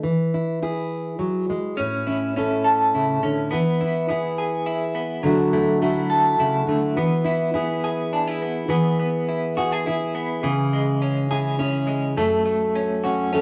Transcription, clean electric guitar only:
1.77 2.35 C#4 medium
2.07 2.94 E4 medium
2.36 3.22 C#4 soft
2.64 3.57 A4 medium
2.95 3.80 E4 medium
3.23 3.50 C#4 medium
3.51 4.07 B3 medium
3.81 4.66 E4 medium
4.09 4.94 B3 soft
4.38 5.31 G#4 medium
4.66 5.53 E4 medium
4.95 5.30 B3 medium
5.23 6.97 F#3 medium
5.53 6.39 E4 medium
5.82 6.68 A3 medium
6.10 7.03 A4 medium
6.40 7.03 E4 medium
6.69 6.97 A3 medium
6.97 7.54 B3 medium
7.26 8.13 E4 medium
7.55 8.41 B3 medium
7.84 8.77 G#4 medium
8.13 8.27 D4 medium
8.27 8.77 E4 medium
8.42 8.69 B3 medium
8.70 8.98 B3 medium
9.00 10.14 B3 medium
9.29 9.85 E4 medium
9.57 9.72 F#4 medium
9.72 10.50 G#4 soft
9.86 10.50 E4 medium
10.15 10.50 B3 medium
10.43 12.17 E3 medium
10.73 11.86 G#3 medium
11.02 11.58 C#4 medium
11.31 12.23 G#4 medium
11.59 12.23 C#4 medium
11.87 12.17 G#3 medium
12.17 12.44 A3 medium
12.46 13.41 A3 medium
12.76 13.31 C#4 medium
13.04 13.41 F#4 medium
13.33 13.41 C#4 medium

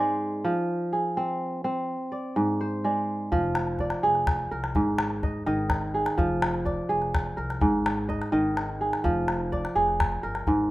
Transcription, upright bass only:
3.32 3.91 F1 medium
4.04 4.43 F1 medium
4.51 4.71 C2 medium
4.76 5.35 G#1 medium
5.47 6.06 G#1 loud
6.19 6.78 F1 medium
6.90 7.29 F1 medium
7.38 7.58 C2 medium
7.61 8.20 G#1 medium
8.32 8.92 G#1 medium
9.04 9.63 F1 loud
9.76 10.15 F1 medium
10.24 10.43 G1 medium
10.48 10.71 G#1 medium

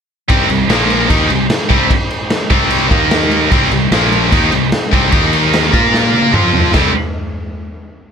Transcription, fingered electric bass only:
0.30 0.48 C2 medium
0.49 0.68 C2 medium
0.69 1.06 A#1 medium
1.10 1.28 D#2 medium
1.30 1.48 C2 medium
1.70 1.89 C2 loud
2.51 2.88 C2 loud
2.91 3.48 D#2 medium
3.52 3.70 C2 medium
3.72 3.90 C2 medium
3.91 4.29 A#1 loud
4.32 4.51 D#2 medium
4.52 4.71 C2 medium
4.93 5.12 C2 medium
5.13 5.69 D#2 medium
5.73 6.30 A#2 medium
6.33 6.71 F2 medium
6.74 6.93 C2 medium

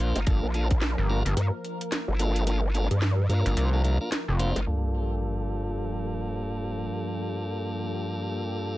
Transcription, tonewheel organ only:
0.00 0.20 A#3 loud
0.00 0.20 D4 loud
0.00 0.20 F4 medium
0.00 0.20 C5 loud
0.27 0.47 A#3 medium
0.27 0.47 D4 medium
0.27 0.47 F4 medium
0.27 0.47 A4 medium
0.55 0.68 A#3 medium
0.55 0.68 D4 medium
0.55 0.68 F4 medium
0.55 0.68 A4 loud
1.09 1.23 A#3 loud
1.09 1.23 D4 medium
1.09 1.23 F4 medium
1.09 1.23 A#4 loud
2.19 2.44 A#3 medium
2.19 2.44 D4 medium
2.19 2.44 F4 medium
2.19 2.44 A4 loud
2.47 2.61 A#3 medium
2.47 2.61 D4 medium
2.47 2.61 F4 medium
2.47 2.61 A4 loud
2.74 2.88 A#3 medium
2.74 2.88 D4 medium
2.74 2.88 F4 medium
2.74 2.88 A4 loud
3.29 3.70 A#3 medium
3.29 3.70 D4 medium
3.29 3.70 F4 medium
3.29 3.70 A#4 medium
3.73 3.82 A#3 loud
3.73 3.82 D4 medium
3.73 3.82 F4 medium
3.73 3.82 A4 loud
3.84 3.98 A#3 medium
3.84 3.98 D4 medium
3.84 3.98 F4 medium
3.84 3.98 A#4 medium
4.01 4.10 A#3 medium
4.01 4.10 D4 medium
4.01 4.10 F4 medium
4.01 4.10 A#4 medium
4.39 4.60 A#3 loud
4.39 4.60 D4 medium
4.39 4.60 F4 medium
4.39 4.60 C5 loud
4.67 8.78 G2 medium
4.67 8.78 A#3 medium
4.67 8.78 D4 medium
4.67 8.78 F4 medium
4.67 8.78 A4 medium

